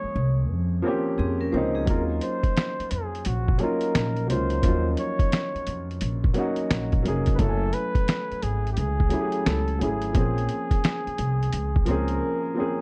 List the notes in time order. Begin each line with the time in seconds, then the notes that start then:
Already playing: F3 G#3 A#3 C#4 G#4 C#5
0.04 muted upright bass stroke
0.16 C2
0.50 F2
0.82 F3 A#3 C4 C#4
0.88 G4
1.18 F2 C4 G#4
1.41 C#4 A#4
1.52 C#2 F3 A#3 C4 C#4 C5
1.57 D#4
1.75 C4 G#4
1.85 D#2 F#3 A#3 C#4 A#4, kick, closed hi-hat
1.90 D#4 F4
2.21 C5, closed hi-hat
2.43 kick, closed hi-hat
2.57 snare, closed hi-hat
2.80 muted upright bass stroke, closed hi-hat
2.91 F2 G#4, closed hi-hat
3.15 closed hi-hat
3.25 A#1 F#4, closed hi-hat
3.48 kick
3.58 F#3 A#3 C#4 A#4, closed hi-hat
3.62 D#4 F4
3.81 closed hi-hat
3.95 A#1, snare, closed hi-hat
4.17 closed hi-hat
4.27 C#2 F#3 A#3 C#4 C5, closed hi-hat
4.31 D#4 F4
4.50 closed hi-hat
4.61 D#2 F3 A#3 C#4, kick, closed hi-hat
4.65 F#3 D#4 F4
4.97 C#5, closed hi-hat
5.19 kick, closed hi-hat
5.32 snare, closed hi-hat
5.55 muted upright bass stroke, closed hi-hat
5.67 F2, closed hi-hat
5.91 closed hi-hat
6.01 A#1, closed hi-hat
6.24 kick
6.34 F#3 A#3 C#4 D#4, closed hi-hat
6.39 F#4
6.56 closed hi-hat
6.71 A#1, snare, closed hi-hat
6.92 kick, closed hi-hat
7.03 F1 F#3 A#3 C#4, closed hi-hat
7.07 D#4 G#4
7.26 kick, closed hi-hat
7.35 F#3 A3 B4, kick, closed hi-hat
7.39 F#1 C#4 E4 F#4 A4
7.49 G#5
7.73 B4, closed hi-hat
7.95 kick, closed hi-hat
8.08 snare, closed hi-hat
8.31 muted upright bass stroke, closed hi-hat
8.42 G#1 G#4, closed hi-hat
8.67 closed hi-hat
8.72 G4
8.77 C#2 G#4, closed hi-hat
9.00 kick
9.09 F#3 A3 C#4, closed hi-hat
9.13 E4 G4
9.21 G#4
9.32 closed hi-hat
9.46 C#2 A4, snare, closed hi-hat
9.68 closed hi-hat
9.79 G#1 F#3 A3 C#4 E4 G#4, closed hi-hat
9.84 G#4
10.02 closed hi-hat
10.13 A#1 F3 A#3 C4, kick, closed hi-hat
10.17 C#4 G#4
10.38 closed hi-hat
10.49 closed hi-hat
10.71 kick, closed hi-hat
10.84 snare, closed hi-hat
11.07 muted upright bass stroke, closed hi-hat
11.18 C2, closed hi-hat
11.43 closed hi-hat
11.53 C#2, closed hi-hat
11.76 kick
11.85 C#2 F3 A#3 C4 A#4, closed hi-hat
11.89 C#4 G#4
12.08 closed hi-hat
12.54 F3 A#3 C4
12.58 C#4 G#4